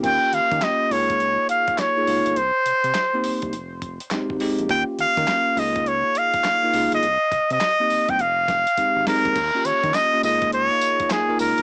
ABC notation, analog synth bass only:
X:1
M:4/4
L:1/16
Q:"Swing 16ths" 1/4=103
K:Ebmix
V:1 name="Analog synth bass" clef=bass
E,, z E, E, z2 D,,4 z4 D,, G,,, | C,, z C, C, z2 C,, C,, F,,,4 A,,, A,,, z B,,, | E,, z E, E, z2 D,,4 z4 D,, G,,, | C,, z C, C, z2 C,, C,, F,,,4 A,,, A,,, z B,,, |
E,, z E, E, z2 D,,4 z4 D,, G,,, |]